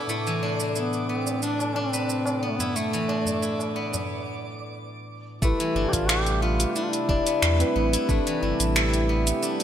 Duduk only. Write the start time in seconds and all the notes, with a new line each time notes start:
0.76 B3
1.09 C4
1.43 D4
1.76 C4
2.43 B3
2.50 A3
2.57 B3
2.76 A3
5.42 E4
5.89 F4 G4
6.09 G4
6.42 F4
6.75 E4
6.83 F4
6.90 E4
8.09 D4
8.42 E4